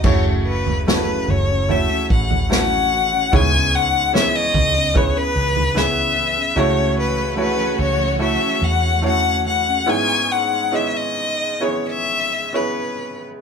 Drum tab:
CC |x---------------|----------------|----------------|----------------|
SD |----o-------o---|----o-------o---|----------------|----------------|
FT |o--o--o-o--o----|o-----o-o--o----|----------------|----------------|
BD |o---------o-----|o-----o-o-------|----------------|----------------|